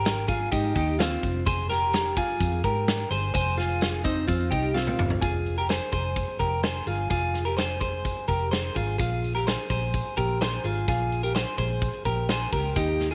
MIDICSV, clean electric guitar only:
0, 0, Header, 1, 2, 480
1, 0, Start_track
1, 0, Key_signature, -4, "minor"
1, 0, Tempo, 470958
1, 1492, Time_signature, 4, 2, 24, 8
1, 13396, End_track
2, 0, Start_track
2, 0, Title_t, "Clean electric guitar"
2, 0, Program_c, 0, 27
2, 0, Note_on_c, 0, 67, 59
2, 0, Note_on_c, 0, 70, 72
2, 261, Note_off_c, 0, 70, 0
2, 265, Note_off_c, 0, 67, 0
2, 287, Note_on_c, 0, 68, 73
2, 294, Note_on_c, 0, 65, 66
2, 523, Note_off_c, 0, 68, 0
2, 527, Note_on_c, 0, 67, 79
2, 532, Note_off_c, 0, 65, 0
2, 536, Note_on_c, 0, 63, 65
2, 757, Note_off_c, 0, 67, 0
2, 766, Note_off_c, 0, 63, 0
2, 769, Note_on_c, 0, 67, 71
2, 778, Note_on_c, 0, 63, 62
2, 1004, Note_off_c, 0, 63, 0
2, 1008, Note_on_c, 0, 65, 73
2, 1011, Note_off_c, 0, 67, 0
2, 1018, Note_on_c, 0, 60, 57
2, 1461, Note_off_c, 0, 65, 0
2, 1466, Note_off_c, 0, 60, 0
2, 1492, Note_on_c, 0, 72, 99
2, 1499, Note_on_c, 0, 68, 79
2, 1723, Note_off_c, 0, 72, 0
2, 1728, Note_on_c, 0, 70, 78
2, 1730, Note_off_c, 0, 68, 0
2, 1734, Note_on_c, 0, 67, 55
2, 2180, Note_off_c, 0, 70, 0
2, 2183, Note_off_c, 0, 67, 0
2, 2214, Note_on_c, 0, 68, 84
2, 2223, Note_on_c, 0, 65, 65
2, 2663, Note_off_c, 0, 68, 0
2, 2668, Note_off_c, 0, 65, 0
2, 2694, Note_on_c, 0, 70, 69
2, 2701, Note_on_c, 0, 67, 54
2, 3143, Note_off_c, 0, 70, 0
2, 3146, Note_off_c, 0, 67, 0
2, 3167, Note_on_c, 0, 72, 75
2, 3177, Note_on_c, 0, 68, 55
2, 3391, Note_off_c, 0, 72, 0
2, 3401, Note_off_c, 0, 68, 0
2, 3403, Note_on_c, 0, 72, 104
2, 3413, Note_on_c, 0, 68, 77
2, 3631, Note_off_c, 0, 68, 0
2, 3645, Note_on_c, 0, 65, 65
2, 3645, Note_on_c, 0, 68, 64
2, 3646, Note_off_c, 0, 72, 0
2, 4096, Note_off_c, 0, 68, 0
2, 4098, Note_off_c, 0, 65, 0
2, 4121, Note_on_c, 0, 63, 77
2, 4128, Note_on_c, 0, 60, 57
2, 4355, Note_off_c, 0, 63, 0
2, 4357, Note_off_c, 0, 60, 0
2, 4359, Note_on_c, 0, 65, 76
2, 4370, Note_on_c, 0, 60, 59
2, 4594, Note_on_c, 0, 67, 74
2, 4599, Note_off_c, 0, 65, 0
2, 4603, Note_on_c, 0, 63, 58
2, 4608, Note_off_c, 0, 60, 0
2, 4831, Note_off_c, 0, 63, 0
2, 4835, Note_on_c, 0, 65, 77
2, 4840, Note_off_c, 0, 67, 0
2, 4843, Note_on_c, 0, 60, 57
2, 5291, Note_off_c, 0, 65, 0
2, 5296, Note_off_c, 0, 60, 0
2, 5315, Note_on_c, 0, 68, 91
2, 5324, Note_on_c, 0, 65, 69
2, 5659, Note_off_c, 0, 68, 0
2, 5663, Note_off_c, 0, 65, 0
2, 5685, Note_on_c, 0, 70, 64
2, 5692, Note_on_c, 0, 67, 50
2, 5798, Note_off_c, 0, 70, 0
2, 5802, Note_on_c, 0, 72, 66
2, 5806, Note_off_c, 0, 67, 0
2, 5810, Note_on_c, 0, 68, 56
2, 6025, Note_off_c, 0, 72, 0
2, 6037, Note_on_c, 0, 72, 66
2, 6038, Note_off_c, 0, 68, 0
2, 6050, Note_on_c, 0, 68, 52
2, 6493, Note_off_c, 0, 72, 0
2, 6499, Note_off_c, 0, 68, 0
2, 6518, Note_on_c, 0, 70, 64
2, 6524, Note_on_c, 0, 67, 51
2, 6756, Note_off_c, 0, 70, 0
2, 6760, Note_on_c, 0, 72, 62
2, 6765, Note_off_c, 0, 67, 0
2, 6771, Note_on_c, 0, 68, 49
2, 6989, Note_off_c, 0, 68, 0
2, 7001, Note_on_c, 0, 68, 63
2, 7003, Note_off_c, 0, 72, 0
2, 7007, Note_on_c, 0, 65, 52
2, 7225, Note_off_c, 0, 68, 0
2, 7232, Note_off_c, 0, 65, 0
2, 7238, Note_on_c, 0, 68, 95
2, 7244, Note_on_c, 0, 65, 72
2, 7580, Note_off_c, 0, 68, 0
2, 7584, Note_off_c, 0, 65, 0
2, 7595, Note_on_c, 0, 70, 71
2, 7606, Note_on_c, 0, 67, 55
2, 7709, Note_off_c, 0, 70, 0
2, 7713, Note_on_c, 0, 72, 68
2, 7717, Note_off_c, 0, 67, 0
2, 7721, Note_on_c, 0, 68, 53
2, 7944, Note_off_c, 0, 72, 0
2, 7952, Note_off_c, 0, 68, 0
2, 7956, Note_on_c, 0, 72, 67
2, 7964, Note_on_c, 0, 68, 50
2, 8412, Note_off_c, 0, 72, 0
2, 8417, Note_off_c, 0, 68, 0
2, 8440, Note_on_c, 0, 70, 67
2, 8449, Note_on_c, 0, 67, 51
2, 8674, Note_off_c, 0, 70, 0
2, 8678, Note_off_c, 0, 67, 0
2, 8678, Note_on_c, 0, 72, 77
2, 8682, Note_on_c, 0, 68, 57
2, 8906, Note_off_c, 0, 68, 0
2, 8918, Note_on_c, 0, 68, 71
2, 8923, Note_off_c, 0, 72, 0
2, 8929, Note_on_c, 0, 65, 51
2, 9145, Note_off_c, 0, 68, 0
2, 9155, Note_off_c, 0, 65, 0
2, 9157, Note_on_c, 0, 68, 92
2, 9167, Note_on_c, 0, 65, 71
2, 9500, Note_off_c, 0, 68, 0
2, 9506, Note_off_c, 0, 65, 0
2, 9528, Note_on_c, 0, 70, 68
2, 9537, Note_on_c, 0, 67, 54
2, 9647, Note_off_c, 0, 70, 0
2, 9652, Note_off_c, 0, 67, 0
2, 9652, Note_on_c, 0, 72, 69
2, 9664, Note_on_c, 0, 68, 60
2, 9874, Note_off_c, 0, 72, 0
2, 9883, Note_off_c, 0, 68, 0
2, 9886, Note_on_c, 0, 72, 66
2, 9895, Note_on_c, 0, 68, 54
2, 10338, Note_off_c, 0, 72, 0
2, 10343, Note_off_c, 0, 68, 0
2, 10365, Note_on_c, 0, 70, 65
2, 10370, Note_on_c, 0, 67, 48
2, 10607, Note_off_c, 0, 70, 0
2, 10609, Note_off_c, 0, 67, 0
2, 10611, Note_on_c, 0, 72, 72
2, 10621, Note_on_c, 0, 68, 53
2, 10836, Note_off_c, 0, 68, 0
2, 10848, Note_on_c, 0, 68, 68
2, 10850, Note_off_c, 0, 72, 0
2, 10859, Note_on_c, 0, 65, 55
2, 11079, Note_off_c, 0, 68, 0
2, 11086, Note_off_c, 0, 65, 0
2, 11091, Note_on_c, 0, 68, 95
2, 11098, Note_on_c, 0, 65, 72
2, 11428, Note_off_c, 0, 68, 0
2, 11432, Note_off_c, 0, 65, 0
2, 11449, Note_on_c, 0, 70, 70
2, 11457, Note_on_c, 0, 67, 55
2, 11561, Note_off_c, 0, 70, 0
2, 11566, Note_on_c, 0, 72, 69
2, 11569, Note_off_c, 0, 67, 0
2, 11573, Note_on_c, 0, 68, 51
2, 11791, Note_off_c, 0, 72, 0
2, 11801, Note_off_c, 0, 68, 0
2, 11803, Note_on_c, 0, 72, 66
2, 11814, Note_on_c, 0, 68, 53
2, 12258, Note_off_c, 0, 72, 0
2, 12263, Note_off_c, 0, 68, 0
2, 12286, Note_on_c, 0, 70, 65
2, 12292, Note_on_c, 0, 67, 52
2, 12528, Note_off_c, 0, 70, 0
2, 12531, Note_off_c, 0, 67, 0
2, 12535, Note_on_c, 0, 72, 70
2, 12541, Note_on_c, 0, 68, 58
2, 12763, Note_off_c, 0, 72, 0
2, 12767, Note_on_c, 0, 70, 64
2, 12773, Note_off_c, 0, 68, 0
2, 12777, Note_on_c, 0, 67, 49
2, 12994, Note_off_c, 0, 67, 0
2, 13007, Note_on_c, 0, 67, 89
2, 13008, Note_off_c, 0, 70, 0
2, 13013, Note_on_c, 0, 63, 66
2, 13347, Note_off_c, 0, 67, 0
2, 13350, Note_off_c, 0, 63, 0
2, 13362, Note_on_c, 0, 68, 70
2, 13396, Note_off_c, 0, 68, 0
2, 13396, End_track
0, 0, End_of_file